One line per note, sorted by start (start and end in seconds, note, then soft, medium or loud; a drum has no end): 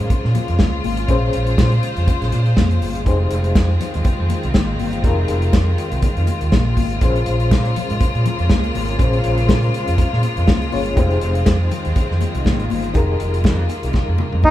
0.00 3.03 C#3 medium
0.00 6.98 G#3 medium
0.00 1.07 A#3 medium
0.00 1.04 C#4 medium
0.00 1.05 F4 medium
0.00 3.03 F4 medium
0.00 1.06 G#4 medium
0.00 1.06 C5 medium
0.10 muted fingered electric bass stroke soft
0.10 kick loud
0.10 closed hi-hat medium
0.10 muted conga soft
0.25 0.32 A#2 medium
0.25 snare soft
0.35 closed hi-hat medium
0.35 muted conga soft
0.35 low conga medium
0.48 0.57 F2 medium
0.48 closed hi-hat soft
0.59 0.78 C#2 medium
0.59 kick loud
0.59 snare loud
0.59 high conga medium
0.84 1.03 G#1 medium
0.84 open hi-hat medium
0.84 high conga medium
0.97 closed hi-hat soft
1.08 1.27 A#1 loud
1.08 3.02 C#4 medium
1.08 3.02 F4 medium
1.08 3.03 G#4 medium
1.08 3.05 C5 medium
1.08 3.03 C5 medium
1.08 kick loud
1.08 closed hi-hat medium
1.08 muted conga soft
1.33 1.52 A#1 loud
1.33 closed hi-hat medium
1.47 closed hi-hat soft
1.58 1.77 A#2 loud
1.58 kick loud
1.58 snare loud
1.58 high conga medium
1.72 closed hi-hat soft
1.83 closed hi-hat medium
1.83 muted conga soft
1.97 2.05 F2 medium
1.97 closed hi-hat soft
2.07 kick loud
2.07 closed hi-hat medium
2.07 muted conga soft
2.22 2.30 A#1 medium
2.22 snare soft
2.22 closed hi-hat soft
2.32 2.51 A#2 medium
2.32 closed hi-hat medium
2.32 muted conga medium
2.46 closed hi-hat soft
2.57 2.76 F2 medium
2.57 kick loud
2.57 snare loud
2.57 high conga medium
2.71 closed hi-hat soft
2.82 3.00 G1 medium
2.82 open hi-hat medium
2.82 high conga medium
2.95 closed hi-hat soft
3.05 3.25 F1 loud
3.05 6.98 D#3 medium
3.05 6.98 C4 medium
3.05 4.99 D#4 medium
3.05 14.51 F4 medium
3.05 5.00 G4 medium
3.05 5.00 G#4 medium
3.05 5.01 C5 medium
3.05 kick loud
3.05 closed hi-hat medium
3.05 muted conga soft
3.31 3.50 F1 loud
3.31 closed hi-hat medium
3.44 closed hi-hat soft
3.55 3.74 F2 loud
3.55 kick loud
3.55 snare loud
3.55 high conga medium
3.81 closed hi-hat medium
3.81 muted conga soft
3.81 low conga medium
3.94 4.03 D#2 loud
3.94 closed hi-hat soft
4.05 muted fingered electric bass stroke medium
4.05 kick loud
4.05 closed hi-hat medium
4.05 muted conga soft
4.20 4.28 F2 medium
4.30 closed hi-hat medium
4.30 muted conga medium
4.30 low conga medium
4.43 4.52 C2 loud
4.43 closed hi-hat soft
4.54 4.73 G#1 medium
4.54 kick loud
4.54 snare loud
4.54 high conga medium
4.79 4.98 G1 medium
4.79 open hi-hat medium
4.79 high conga medium
4.93 closed hi-hat soft
5.02 5.23 F1 loud
5.02 6.97 D#4 medium
5.02 6.98 G4 medium
5.02 6.98 G#4 medium
5.02 6.98 A#4 medium
5.02 kick loud
5.02 closed hi-hat medium
5.02 muted conga soft
5.28 5.47 F1 loud
5.28 closed hi-hat medium
5.42 closed hi-hat soft
5.53 5.72 F2 loud
5.53 kick loud
5.53 snare loud
5.53 high conga medium
5.78 closed hi-hat medium
5.92 6.00 C2 medium
5.92 closed hi-hat soft
6.02 muted fingered electric bass stroke soft
6.02 kick loud
6.02 closed hi-hat medium
6.02 muted conga soft
6.17 6.25 F2 medium
6.17 closed hi-hat soft
6.27 closed hi-hat medium
6.27 muted conga medium
6.41 6.50 D#2 medium
6.41 closed hi-hat soft
6.52 6.71 A#1 medium
6.52 kick loud
6.52 snare loud
6.52 high conga medium
6.77 6.96 G#1 medium
6.77 kick medium
6.77 open hi-hat medium
6.77 high conga medium
6.90 closed hi-hat soft
7.01 7.20 A#1 loud
7.01 10.93 C#3 medium
7.01 14.51 G#3 medium
7.01 10.93 A#3 medium
7.01 8.95 C#4 medium
7.01 8.96 F4 medium
7.01 8.96 G#4 medium
7.01 8.97 C5 medium
7.01 kick loud
7.01 closed hi-hat medium
7.01 muted conga soft
7.16 closed hi-hat soft
7.26 7.53 A#1 loud
7.26 closed hi-hat medium
7.40 closed hi-hat soft
7.51 7.70 A#2 loud
7.51 kick loud
7.51 snare loud
7.51 high conga medium
7.65 closed hi-hat soft
7.76 closed hi-hat medium
7.76 muted conga soft
7.76 low conga medium
7.90 7.98 G#2 loud
7.90 closed hi-hat soft
8.00 muted fingered electric bass stroke soft
8.00 kick loud
8.00 closed hi-hat medium
8.00 muted conga soft
8.15 8.23 A#2 medium
8.15 closed hi-hat soft
8.26 closed hi-hat medium
8.26 muted conga medium
8.26 low conga medium
8.39 8.48 F2 medium
8.39 closed hi-hat soft
8.49 8.69 C#2 medium
8.49 kick loud
8.49 snare loud
8.49 high conga medium
8.64 closed hi-hat soft
8.75 8.94 G#1 medium
8.75 open hi-hat medium
8.75 high conga medium
8.88 closed hi-hat soft
8.99 9.18 A#1 loud
8.99 10.69 C#4 medium
8.99 10.69 F4 medium
8.99 10.70 G#4 medium
8.99 10.70 C5 medium
8.99 kick loud
8.99 closed hi-hat medium
8.99 muted conga soft
9.13 closed hi-hat soft
9.24 9.43 A#1 loud
9.24 closed hi-hat medium
9.38 closed hi-hat soft
9.49 9.68 A#2 loud
9.49 kick loud
9.49 snare loud
9.49 high conga medium
9.63 closed hi-hat soft
9.74 closed hi-hat medium
9.74 muted conga soft
9.88 9.96 F2 medium
9.88 closed hi-hat soft
9.98 muted fingered electric bass stroke soft
9.98 kick loud
9.98 closed hi-hat medium
9.98 muted conga medium
10.13 10.21 A#2 medium
10.13 snare soft
10.23 closed hi-hat medium
10.23 muted conga medium
10.37 10.45 F2 loud
10.37 closed hi-hat soft
10.47 10.67 C#2 medium
10.47 kick loud
10.47 snare loud
10.47 high conga medium
10.62 closed hi-hat soft
10.72 10.92 G1 medium
10.72 10.97 C#4 medium
10.72 10.97 F4 medium
10.72 10.97 G#4 medium
10.72 10.98 C#5 medium
10.72 open hi-hat medium
10.72 high conga medium
10.86 closed hi-hat soft
10.96 11.16 F1 loud
10.96 14.51 D#3 medium
10.96 12.93 C4 medium
10.96 12.91 D#4 medium
10.96 12.91 G4 medium
10.96 12.92 G#4 medium
10.96 12.92 C5 medium
10.96 kick loud
10.96 closed hi-hat medium
10.96 muted conga soft
11.11 closed hi-hat soft
11.21 11.41 F1 loud
11.21 closed hi-hat medium
11.35 closed hi-hat soft
11.46 11.65 F2 loud
11.46 kick loud
11.46 snare loud
11.46 high conga medium
11.71 closed hi-hat medium
11.71 low conga medium
11.85 11.94 D#2 medium
11.85 closed hi-hat soft
11.96 muted fingered electric bass stroke soft
11.96 kick loud
11.96 closed hi-hat medium
11.96 muted conga soft
12.11 12.19 F2 medium
12.11 snare soft
12.21 closed hi-hat medium
12.21 muted conga medium
12.21 low conga medium
12.35 12.48 C2 medium
12.35 closed hi-hat soft
12.45 12.65 G#1 medium
12.45 kick loud
12.45 snare loud
12.45 high conga medium
12.60 closed hi-hat soft
12.70 12.95 G1 medium
12.70 open hi-hat medium
12.70 high conga medium
12.84 closed hi-hat soft
12.94 13.14 F1 loud
12.94 14.51 A#3 medium
12.94 14.51 D#4 medium
12.94 14.51 G4 medium
12.94 14.51 G#4 medium
12.94 14.51 A#4 medium
12.94 kick loud
12.94 closed hi-hat medium
12.94 muted conga soft
13.20 13.47 F1 medium
13.20 closed hi-hat medium
13.34 closed hi-hat soft
13.44 13.63 F2 loud
13.44 kick loud
13.44 snare loud
13.44 high conga medium
13.69 closed hi-hat medium
13.69 muted conga soft
13.83 13.92 C2 loud
13.83 closed hi-hat medium
13.93 kick loud
13.93 snare medium
13.93 muted conga soft
14.09 14.16 F2 medium
14.18 high tom medium
14.18 muted conga medium
14.33 14.41 F2 loud
14.33 high tom medium
14.43 14.51 C2 medium
14.43 14.51 D#4 loud
14.43 kick loud
14.43 high conga medium